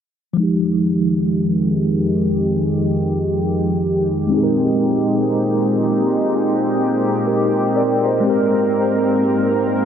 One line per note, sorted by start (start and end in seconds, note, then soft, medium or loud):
0.33 4.25 F3 medium
0.33 4.26 G#3 medium
0.38 4.27 F2 medium
0.38 4.27 D#3 medium
0.38 4.27 G#3 medium
0.38 4.28 D#4 medium
0.38 6.24 G4 medium
0.43 4.30 G4 medium
4.27 8.19 G#3 medium
4.27 8.20 C4 medium
4.32 8.21 A#2 medium
4.32 8.21 G#3 medium
4.32 9.85 C4 medium
4.32 8.21 D#4 medium
4.32 7.24 G4 medium
4.37 4.42 G#4 medium
4.43 7.26 A#4 medium
6.28 8.23 G4 medium
7.27 7.74 G4 medium
7.27 7.74 A#4 medium
7.76 8.03 A#4 medium
7.76 8.03 D5 medium
8.05 8.52 C5 medium
8.05 8.51 D#5 medium
8.20 9.85 G#3 medium
8.20 9.85 C4 medium
8.24 9.85 G#2 medium
8.24 9.85 A#3 medium
8.24 9.85 G4 medium
8.24 9.85 A#4 medium
8.30 9.85 A#4 medium